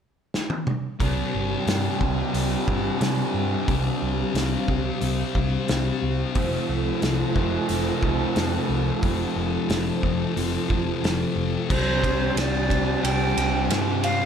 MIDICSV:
0, 0, Header, 1, 7, 480
1, 0, Start_track
1, 0, Tempo, 668151
1, 720, Time_signature, 4, 2, 24, 8
1, 10240, End_track
2, 0, Start_track
2, 0, Title_t, "Flute"
2, 0, Program_c, 0, 73
2, 8410, Note_on_c, 0, 72, 82
2, 8894, Note_on_c, 0, 74, 88
2, 8905, Note_off_c, 0, 72, 0
2, 9365, Note_on_c, 0, 79, 106
2, 9376, Note_off_c, 0, 74, 0
2, 9843, Note_off_c, 0, 79, 0
2, 10085, Note_on_c, 0, 77, 110
2, 10240, Note_off_c, 0, 77, 0
2, 10240, End_track
3, 0, Start_track
3, 0, Title_t, "Analog synth pad"
3, 0, Program_c, 1, 89
3, 724, Note_on_c, 1, 79, 87
3, 728, Note_on_c, 1, 72, 69
3, 730, Note_on_c, 1, 62, 75
3, 730, Note_on_c, 1, 67, 68
3, 2628, Note_off_c, 1, 79, 0
3, 2646, Note_on_c, 1, 77, 83
3, 4545, Note_off_c, 1, 62, 0
3, 4545, Note_off_c, 1, 67, 0
3, 4549, Note_off_c, 1, 77, 0
3, 4560, Note_on_c, 1, 69, 74
3, 4560, Note_on_c, 1, 81, 83
3, 4562, Note_on_c, 1, 65, 75
3, 8373, Note_off_c, 1, 69, 0
3, 8373, Note_off_c, 1, 81, 0
3, 8374, Note_off_c, 1, 65, 0
3, 8382, Note_off_c, 1, 72, 0
3, 8409, Note_on_c, 1, 79, 82
3, 8411, Note_on_c, 1, 62, 74
3, 8411, Note_on_c, 1, 72, 75
3, 8412, Note_on_c, 1, 67, 75
3, 10240, Note_off_c, 1, 62, 0
3, 10240, Note_off_c, 1, 67, 0
3, 10240, Note_off_c, 1, 72, 0
3, 10240, Note_off_c, 1, 79, 0
3, 10240, End_track
4, 0, Start_track
4, 0, Title_t, "Overdriven electric guitar"
4, 0, Program_c, 2, 29
4, 732, Note_on_c, 2, 62, 81
4, 4573, Note_on_c, 2, 57, 75
4, 4574, Note_off_c, 2, 62, 0
4, 4579, Note_on_c, 2, 60, 71
4, 8399, Note_off_c, 2, 60, 0
4, 8405, Note_off_c, 2, 57, 0
4, 8413, Note_on_c, 2, 62, 82
4, 10240, Note_off_c, 2, 62, 0
4, 10240, End_track
5, 0, Start_track
5, 0, Title_t, "Distorted electric guitar"
5, 0, Program_c, 3, 30
5, 714, Note_on_c, 3, 48, 81
5, 725, Note_on_c, 3, 55, 87
5, 737, Note_on_c, 3, 60, 95
5, 1193, Note_off_c, 3, 48, 0
5, 1196, Note_on_c, 3, 48, 75
5, 1205, Note_off_c, 3, 55, 0
5, 1208, Note_on_c, 3, 55, 75
5, 1213, Note_off_c, 3, 60, 0
5, 1216, Note_on_c, 3, 60, 84
5, 1432, Note_off_c, 3, 60, 0
5, 1435, Note_on_c, 3, 60, 68
5, 1454, Note_off_c, 3, 55, 0
5, 1457, Note_on_c, 3, 55, 54
5, 1666, Note_off_c, 3, 48, 0
5, 1668, Note_off_c, 3, 55, 0
5, 1669, Note_on_c, 3, 48, 89
5, 1677, Note_on_c, 3, 55, 97
5, 1686, Note_off_c, 3, 60, 0
5, 1689, Note_on_c, 3, 60, 96
5, 2137, Note_off_c, 3, 48, 0
5, 2145, Note_on_c, 3, 48, 71
5, 2153, Note_off_c, 3, 55, 0
5, 2162, Note_on_c, 3, 55, 76
5, 2166, Note_off_c, 3, 60, 0
5, 2169, Note_on_c, 3, 60, 80
5, 2625, Note_off_c, 3, 48, 0
5, 2634, Note_on_c, 3, 48, 88
5, 2640, Note_off_c, 3, 55, 0
5, 2648, Note_on_c, 3, 55, 84
5, 2655, Note_off_c, 3, 60, 0
5, 2658, Note_on_c, 3, 60, 90
5, 3104, Note_off_c, 3, 48, 0
5, 3113, Note_on_c, 3, 48, 69
5, 3120, Note_off_c, 3, 55, 0
5, 3129, Note_on_c, 3, 55, 71
5, 3134, Note_off_c, 3, 60, 0
5, 3137, Note_on_c, 3, 60, 85
5, 3354, Note_off_c, 3, 60, 0
5, 3357, Note_on_c, 3, 60, 66
5, 3371, Note_off_c, 3, 55, 0
5, 3380, Note_on_c, 3, 55, 52
5, 3581, Note_off_c, 3, 48, 0
5, 3590, Note_on_c, 3, 48, 88
5, 3598, Note_off_c, 3, 55, 0
5, 3606, Note_on_c, 3, 55, 90
5, 3614, Note_off_c, 3, 60, 0
5, 3617, Note_on_c, 3, 60, 102
5, 4064, Note_off_c, 3, 48, 0
5, 4072, Note_on_c, 3, 48, 73
5, 4079, Note_off_c, 3, 55, 0
5, 4088, Note_on_c, 3, 55, 66
5, 4094, Note_off_c, 3, 60, 0
5, 4097, Note_on_c, 3, 60, 80
5, 4546, Note_off_c, 3, 48, 0
5, 4554, Note_off_c, 3, 55, 0
5, 4558, Note_on_c, 3, 41, 76
5, 4572, Note_on_c, 3, 48, 90
5, 4581, Note_on_c, 3, 53, 90
5, 5040, Note_off_c, 3, 41, 0
5, 5042, Note_on_c, 3, 41, 69
5, 5046, Note_off_c, 3, 48, 0
5, 5055, Note_on_c, 3, 48, 77
5, 5065, Note_off_c, 3, 53, 0
5, 5068, Note_on_c, 3, 53, 73
5, 5277, Note_off_c, 3, 53, 0
5, 5279, Note_on_c, 3, 53, 66
5, 5296, Note_off_c, 3, 48, 0
5, 5304, Note_on_c, 3, 48, 56
5, 5522, Note_off_c, 3, 41, 0
5, 5525, Note_on_c, 3, 41, 82
5, 5527, Note_off_c, 3, 48, 0
5, 5535, Note_on_c, 3, 48, 84
5, 5539, Note_off_c, 3, 53, 0
5, 5548, Note_on_c, 3, 53, 104
5, 5993, Note_off_c, 3, 41, 0
5, 6002, Note_off_c, 3, 48, 0
5, 6002, Note_on_c, 3, 41, 69
5, 6010, Note_on_c, 3, 48, 83
5, 6016, Note_off_c, 3, 53, 0
5, 6024, Note_on_c, 3, 53, 82
5, 6471, Note_off_c, 3, 41, 0
5, 6480, Note_on_c, 3, 41, 80
5, 6485, Note_off_c, 3, 48, 0
5, 6494, Note_on_c, 3, 48, 86
5, 6496, Note_off_c, 3, 53, 0
5, 6504, Note_on_c, 3, 53, 94
5, 6611, Note_off_c, 3, 60, 0
5, 6952, Note_off_c, 3, 41, 0
5, 6961, Note_on_c, 3, 41, 75
5, 6965, Note_off_c, 3, 48, 0
5, 6974, Note_on_c, 3, 48, 78
5, 6977, Note_off_c, 3, 53, 0
5, 6986, Note_on_c, 3, 53, 73
5, 7191, Note_off_c, 3, 53, 0
5, 7200, Note_on_c, 3, 53, 63
5, 7216, Note_off_c, 3, 48, 0
5, 7224, Note_on_c, 3, 48, 54
5, 7433, Note_off_c, 3, 41, 0
5, 7442, Note_on_c, 3, 41, 89
5, 7447, Note_off_c, 3, 48, 0
5, 7456, Note_off_c, 3, 53, 0
5, 7456, Note_on_c, 3, 48, 84
5, 7465, Note_on_c, 3, 53, 92
5, 7909, Note_off_c, 3, 41, 0
5, 7917, Note_on_c, 3, 41, 76
5, 7922, Note_off_c, 3, 48, 0
5, 7930, Note_on_c, 3, 48, 75
5, 7933, Note_off_c, 3, 53, 0
5, 7942, Note_on_c, 3, 53, 75
5, 8387, Note_off_c, 3, 41, 0
5, 8393, Note_off_c, 3, 48, 0
5, 8399, Note_off_c, 3, 53, 0
5, 8403, Note_on_c, 3, 48, 78
5, 8414, Note_on_c, 3, 55, 88
5, 8424, Note_on_c, 3, 60, 93
5, 8631, Note_off_c, 3, 60, 0
5, 8634, Note_on_c, 3, 60, 72
5, 8659, Note_off_c, 3, 55, 0
5, 8662, Note_on_c, 3, 55, 59
5, 8872, Note_off_c, 3, 48, 0
5, 8875, Note_on_c, 3, 48, 72
5, 8883, Note_off_c, 3, 55, 0
5, 8886, Note_on_c, 3, 55, 79
5, 8897, Note_off_c, 3, 60, 0
5, 8900, Note_on_c, 3, 60, 92
5, 9114, Note_off_c, 3, 60, 0
5, 9117, Note_on_c, 3, 60, 69
5, 9136, Note_off_c, 3, 55, 0
5, 9139, Note_on_c, 3, 55, 54
5, 9354, Note_off_c, 3, 48, 0
5, 9357, Note_on_c, 3, 48, 84
5, 9358, Note_off_c, 3, 55, 0
5, 9366, Note_on_c, 3, 55, 92
5, 9374, Note_off_c, 3, 60, 0
5, 9377, Note_on_c, 3, 60, 95
5, 9593, Note_off_c, 3, 60, 0
5, 9596, Note_on_c, 3, 60, 68
5, 9610, Note_off_c, 3, 55, 0
5, 9619, Note_on_c, 3, 55, 53
5, 9831, Note_off_c, 3, 48, 0
5, 9839, Note_on_c, 3, 48, 79
5, 9844, Note_off_c, 3, 55, 0
5, 9853, Note_on_c, 3, 55, 70
5, 9862, Note_off_c, 3, 60, 0
5, 9865, Note_on_c, 3, 60, 85
5, 10071, Note_off_c, 3, 60, 0
5, 10074, Note_on_c, 3, 60, 70
5, 10093, Note_off_c, 3, 55, 0
5, 10101, Note_on_c, 3, 55, 53
5, 10240, Note_off_c, 3, 48, 0
5, 10240, Note_off_c, 3, 55, 0
5, 10240, Note_off_c, 3, 60, 0
5, 10240, End_track
6, 0, Start_track
6, 0, Title_t, "Fingered electric bass"
6, 0, Program_c, 4, 33
6, 722, Note_on_c, 4, 36, 84
6, 866, Note_off_c, 4, 36, 0
6, 965, Note_on_c, 4, 31, 84
6, 1108, Note_off_c, 4, 31, 0
6, 1197, Note_on_c, 4, 43, 88
6, 1343, Note_off_c, 4, 43, 0
6, 1442, Note_on_c, 4, 36, 80
6, 1587, Note_off_c, 4, 36, 0
6, 1678, Note_on_c, 4, 36, 83
6, 1824, Note_off_c, 4, 36, 0
6, 1924, Note_on_c, 4, 31, 85
6, 2068, Note_off_c, 4, 31, 0
6, 2159, Note_on_c, 4, 48, 75
6, 2305, Note_off_c, 4, 48, 0
6, 2399, Note_on_c, 4, 43, 81
6, 2545, Note_off_c, 4, 43, 0
6, 2647, Note_on_c, 4, 36, 81
6, 2791, Note_off_c, 4, 36, 0
6, 2887, Note_on_c, 4, 36, 90
6, 3031, Note_off_c, 4, 36, 0
6, 3118, Note_on_c, 4, 36, 80
6, 3265, Note_off_c, 4, 36, 0
6, 3365, Note_on_c, 4, 36, 73
6, 3510, Note_off_c, 4, 36, 0
6, 3603, Note_on_c, 4, 36, 82
6, 3749, Note_off_c, 4, 36, 0
6, 3843, Note_on_c, 4, 36, 85
6, 3989, Note_off_c, 4, 36, 0
6, 4090, Note_on_c, 4, 36, 72
6, 4234, Note_off_c, 4, 36, 0
6, 4327, Note_on_c, 4, 36, 90
6, 4472, Note_off_c, 4, 36, 0
6, 4566, Note_on_c, 4, 29, 84
6, 4711, Note_off_c, 4, 29, 0
6, 4805, Note_on_c, 4, 36, 84
6, 4951, Note_off_c, 4, 36, 0
6, 5044, Note_on_c, 4, 36, 82
6, 5190, Note_off_c, 4, 36, 0
6, 5287, Note_on_c, 4, 29, 81
6, 5432, Note_off_c, 4, 29, 0
6, 5527, Note_on_c, 4, 29, 89
6, 5672, Note_off_c, 4, 29, 0
6, 5769, Note_on_c, 4, 36, 79
6, 5913, Note_off_c, 4, 36, 0
6, 6007, Note_on_c, 4, 41, 79
6, 6152, Note_off_c, 4, 41, 0
6, 6242, Note_on_c, 4, 36, 85
6, 6389, Note_off_c, 4, 36, 0
6, 6488, Note_on_c, 4, 29, 90
6, 6633, Note_off_c, 4, 29, 0
6, 6722, Note_on_c, 4, 29, 83
6, 6868, Note_off_c, 4, 29, 0
6, 6963, Note_on_c, 4, 29, 87
6, 7109, Note_off_c, 4, 29, 0
6, 7210, Note_on_c, 4, 29, 76
6, 7354, Note_off_c, 4, 29, 0
6, 7445, Note_on_c, 4, 29, 86
6, 7590, Note_off_c, 4, 29, 0
6, 7688, Note_on_c, 4, 29, 80
6, 7832, Note_off_c, 4, 29, 0
6, 7922, Note_on_c, 4, 29, 69
6, 8068, Note_off_c, 4, 29, 0
6, 8157, Note_on_c, 4, 29, 86
6, 8304, Note_off_c, 4, 29, 0
6, 8406, Note_on_c, 4, 36, 85
6, 8827, Note_off_c, 4, 36, 0
6, 8877, Note_on_c, 4, 36, 80
6, 9301, Note_off_c, 4, 36, 0
6, 9364, Note_on_c, 4, 36, 93
6, 9574, Note_off_c, 4, 36, 0
6, 9602, Note_on_c, 4, 36, 86
6, 9812, Note_off_c, 4, 36, 0
6, 9834, Note_on_c, 4, 43, 78
6, 10240, Note_off_c, 4, 43, 0
6, 10240, End_track
7, 0, Start_track
7, 0, Title_t, "Drums"
7, 245, Note_on_c, 9, 38, 67
7, 317, Note_off_c, 9, 38, 0
7, 358, Note_on_c, 9, 48, 73
7, 430, Note_off_c, 9, 48, 0
7, 480, Note_on_c, 9, 47, 82
7, 552, Note_off_c, 9, 47, 0
7, 721, Note_on_c, 9, 36, 102
7, 722, Note_on_c, 9, 46, 46
7, 793, Note_off_c, 9, 36, 0
7, 794, Note_off_c, 9, 46, 0
7, 1203, Note_on_c, 9, 46, 48
7, 1211, Note_on_c, 9, 38, 108
7, 1275, Note_off_c, 9, 46, 0
7, 1283, Note_off_c, 9, 38, 0
7, 1443, Note_on_c, 9, 36, 79
7, 1515, Note_off_c, 9, 36, 0
7, 1684, Note_on_c, 9, 46, 53
7, 1756, Note_off_c, 9, 46, 0
7, 1924, Note_on_c, 9, 36, 89
7, 1996, Note_off_c, 9, 36, 0
7, 2163, Note_on_c, 9, 46, 51
7, 2171, Note_on_c, 9, 38, 110
7, 2235, Note_off_c, 9, 46, 0
7, 2243, Note_off_c, 9, 38, 0
7, 2644, Note_on_c, 9, 36, 102
7, 2644, Note_on_c, 9, 46, 47
7, 2716, Note_off_c, 9, 36, 0
7, 2716, Note_off_c, 9, 46, 0
7, 3127, Note_on_c, 9, 46, 47
7, 3135, Note_on_c, 9, 38, 96
7, 3199, Note_off_c, 9, 46, 0
7, 3207, Note_off_c, 9, 38, 0
7, 3365, Note_on_c, 9, 36, 76
7, 3436, Note_off_c, 9, 36, 0
7, 3602, Note_on_c, 9, 46, 44
7, 3674, Note_off_c, 9, 46, 0
7, 3845, Note_on_c, 9, 36, 82
7, 3916, Note_off_c, 9, 36, 0
7, 4083, Note_on_c, 9, 46, 46
7, 4091, Note_on_c, 9, 38, 107
7, 4155, Note_off_c, 9, 46, 0
7, 4162, Note_off_c, 9, 38, 0
7, 4563, Note_on_c, 9, 46, 46
7, 4566, Note_on_c, 9, 36, 109
7, 4635, Note_off_c, 9, 46, 0
7, 4638, Note_off_c, 9, 36, 0
7, 5045, Note_on_c, 9, 46, 45
7, 5052, Note_on_c, 9, 38, 101
7, 5116, Note_off_c, 9, 46, 0
7, 5124, Note_off_c, 9, 38, 0
7, 5285, Note_on_c, 9, 36, 84
7, 5357, Note_off_c, 9, 36, 0
7, 5523, Note_on_c, 9, 46, 47
7, 5595, Note_off_c, 9, 46, 0
7, 5766, Note_on_c, 9, 36, 85
7, 5838, Note_off_c, 9, 36, 0
7, 6005, Note_on_c, 9, 46, 47
7, 6013, Note_on_c, 9, 38, 107
7, 6077, Note_off_c, 9, 46, 0
7, 6085, Note_off_c, 9, 38, 0
7, 6484, Note_on_c, 9, 46, 53
7, 6487, Note_on_c, 9, 36, 101
7, 6556, Note_off_c, 9, 46, 0
7, 6559, Note_off_c, 9, 36, 0
7, 6966, Note_on_c, 9, 46, 51
7, 6974, Note_on_c, 9, 38, 107
7, 7038, Note_off_c, 9, 46, 0
7, 7045, Note_off_c, 9, 38, 0
7, 7207, Note_on_c, 9, 36, 72
7, 7279, Note_off_c, 9, 36, 0
7, 7450, Note_on_c, 9, 46, 45
7, 7522, Note_off_c, 9, 46, 0
7, 7688, Note_on_c, 9, 36, 86
7, 7760, Note_off_c, 9, 36, 0
7, 7932, Note_on_c, 9, 46, 44
7, 7940, Note_on_c, 9, 38, 108
7, 8004, Note_off_c, 9, 46, 0
7, 8012, Note_off_c, 9, 38, 0
7, 8407, Note_on_c, 9, 36, 112
7, 8408, Note_on_c, 9, 49, 98
7, 8479, Note_off_c, 9, 36, 0
7, 8480, Note_off_c, 9, 49, 0
7, 8646, Note_on_c, 9, 36, 77
7, 8649, Note_on_c, 9, 51, 59
7, 8718, Note_off_c, 9, 36, 0
7, 8721, Note_off_c, 9, 51, 0
7, 8888, Note_on_c, 9, 51, 93
7, 8896, Note_on_c, 9, 38, 108
7, 8960, Note_off_c, 9, 51, 0
7, 8968, Note_off_c, 9, 38, 0
7, 9126, Note_on_c, 9, 36, 79
7, 9132, Note_on_c, 9, 51, 64
7, 9198, Note_off_c, 9, 36, 0
7, 9204, Note_off_c, 9, 51, 0
7, 9372, Note_on_c, 9, 51, 89
7, 9444, Note_off_c, 9, 51, 0
7, 9609, Note_on_c, 9, 51, 73
7, 9681, Note_off_c, 9, 51, 0
7, 9846, Note_on_c, 9, 51, 91
7, 9854, Note_on_c, 9, 38, 104
7, 9917, Note_off_c, 9, 51, 0
7, 9925, Note_off_c, 9, 38, 0
7, 10083, Note_on_c, 9, 51, 73
7, 10155, Note_off_c, 9, 51, 0
7, 10240, End_track
0, 0, End_of_file